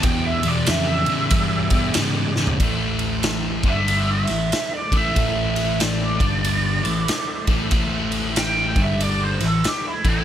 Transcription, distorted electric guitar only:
X:1
M:4/4
L:1/8
Q:"Swing" 1/4=94
K:Am
V:1 name="Distorted electric guitar" clef=bass
[E,,B,,] [E,,B,,] [E,,^C,] [E,,C,] [E,,B,,] [E,,B,,] [E,,C,] [E,,C,] | [A,,E,A,]3 [G,,D,G,]2 [A,,E,] z [A,,E,A,] | [A,,E,A,]3 [G,,D,G,]2 [A,,E,] z [A,,E,A,] | [A,,E,A,]3 [G,,D,G,]2 [A,,E,] z [A,,E,A,] |]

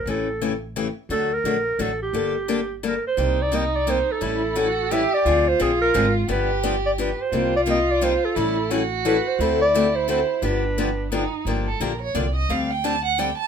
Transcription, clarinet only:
X:1
M:3/4
L:1/8
Q:"Swing" 1/4=174
K:Gm
V:1 name="Clarinet"
A3 z3 | A B3 A G- | G4 B c- | [K:Gphr] c d e d c =A- |
=A4 =e d- | d c A B2 z | =B2 z d B c- | c d e d c =A- |
=A2 z2 =B c- | c d2 c c2 | =B4 z2 | [K:Gm] z6 |
z6 |]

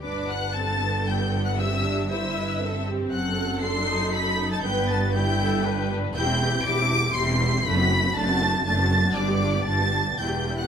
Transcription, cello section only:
X:1
M:3/4
L:1/8
Q:1/4=118
K:G
V:1 name="Cello section" clef=bass
G,,6- | G,,6 | F,,6 | G,,6 |
E,,2 E,,2 E,,2 | F,,2 F,,2 F,,2 | G,,2 G,,2 E,,2 |]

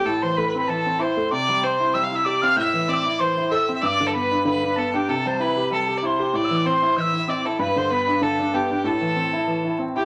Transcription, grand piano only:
X:1
M:4/4
L:1/8
Q:"Swing" 1/4=191
K:Am
V:1 name="Grand piano"
A,, E, A, C E, C E A, | C, G, C E G, E G C | A,, E, C E E, E A C | G,, D, B, D D, D B, D |
C, G, E G G, G E G | A,, E, C E E, E C E | G,, D, B, D D, D B, D | A,, E, C E E, E C E |]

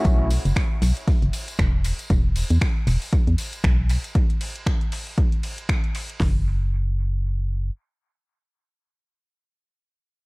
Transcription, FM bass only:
X:1
M:4/4
L:1/16
Q:"Swing 16ths" 1/4=117
K:Emix
V:1 name="FM bass" clef=bass
B,,,3 F,,, z2 B,,, z2 F,,, z2 E,,,3 z | E,,,3 E,, z2 E,,, z2 E,, z2 B,,,3 z | z16 | F,,,12 z4 |
z16 |]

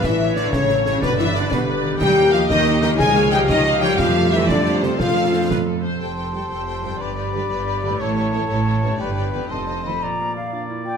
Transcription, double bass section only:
X:1
M:6/8
L:1/8
Q:3/8=121
K:Flyd
V:1 name="Double bass section" clef=bass
A,,,3 A,,,3 | G,,,3 G,,,3 | _E,,6 | _D,,6 |
F,,6- | F,,4- F,, z | F,,,3 F,,,3 | G,,,3 G,,,3 |
A,,,3 A,,,3 | G,,,3 F,,,3 | [K:Bblyd] z6 |]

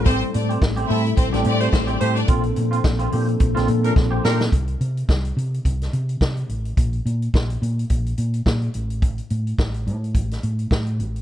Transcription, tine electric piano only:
X:1
M:4/4
L:1/16
Q:"Swing 16ths" 1/4=107
K:Gdor
V:1 name="Tine electric piano"
[G,A,CEA]4 z2 [G,A,CEA]2 z [G,A,CEA]4- [G,A,CEA] z2 | [F,B,CDA]4 z2 [F,B,CDA]2 z [F,B,CDA]4- [F,B,CDA] z2 | z16 | z16 |
z16 |]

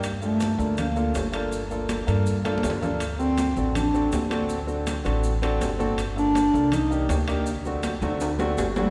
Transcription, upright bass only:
X:1
M:4/4
L:1/8
Q:1/4=162
K:Gm
V:1 name="Upright bass" clef=bass
G,,3 D,,3 G,,,2- | G,,,3 G,,3 D,,2- | D,,3 A,,,3 D,,2- | D,,3 A,,,3 G,,,2- |
G,,,3 C,,3 D,,2- | D,,3 D,,3 G,,,2 |]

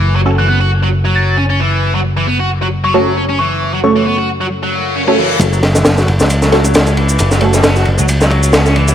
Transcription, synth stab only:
X:1
M:4/4
L:1/16
Q:"Swing 16ths" 1/4=134
K:F#m
V:1 name="Synth stab"
z2 [A,CFA]12- [A,CFA]2- | [A,CFA]8- [A,CFA]2 [A,CFA] z4 z | z2 [A,CFA]8- [A,CFA]3 [A,CFA] z2 | z8 z2 [A,CFA] z4 z |
z2 [A,CFA]12- [A,CFA]2 |]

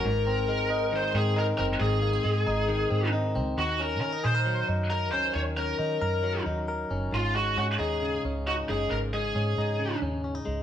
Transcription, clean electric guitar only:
X:1
M:4/4
L:1/16
Q:1/4=135
K:Abmix
V:1 name="Clean electric guitar"
A,,2 C2 A,2 E2 E,2 C2 E2 C2 | A,,2 B, C A,2 E2 E,2 C2 E2 C2 | E,2 D2 D E A B G,2 E2 B2 D2 | E,2 D2 E2 B2 G,2 E2 B2 D2 |
A,,2 A,2 D2 E2 D,2 D2 E2 A,2 | A,,2 A,2 D2 E2 D,2 D2 D E A,2 |]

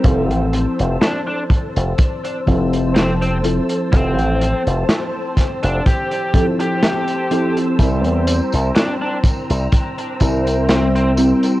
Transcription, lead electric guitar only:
X:1
M:4/4
L:1/16
Q:"Swing 16ths" 1/4=62
K:F
V:1 name="Lead electric guitar"
z4 D D z6 C C z2 | C3 z4 D G2 z G4 z | z4 D D z6 C C z2 |]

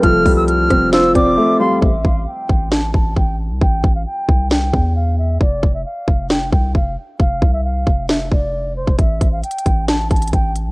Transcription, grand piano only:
X:1
M:4/4
L:1/8
Q:1/4=134
K:Am
V:1 name="Grand piano"
[F,G,A,CF] G,2 C F C A, G, | z8 | z8 | z8 |
z8 | z8 |]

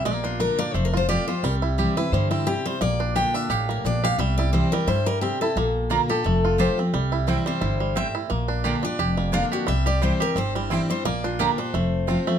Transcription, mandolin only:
X:1
M:4/4
L:1/16
Q:"Swing" 1/4=175
K:Cmix
V:1 name="Mandolin"
z16 | z16 | z16 | z16 |
z4 [B,Fdb] z6 z [CFca] z3 | z4 [CEcg] z6 z [CEcg] z3 | z4 [B,Fdb] z6 z [B,Fdb] z3 | z4 [CEcg] z6 z [CEcg] z3 |
z4 [B,Fdb] z6 z [CFca] z3 |]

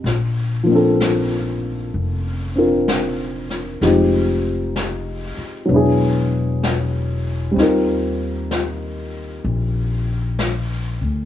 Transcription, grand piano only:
X:1
M:4/4
L:1/8
Q:"Swing" 1/4=64
K:Bb
V:1 name="Grand piano"
z [F,B,CDA]4 [CDFB]3 | [F,_A,CEG]4 [^F,=B,D=E^G]4 | [G,CEFB]8 |]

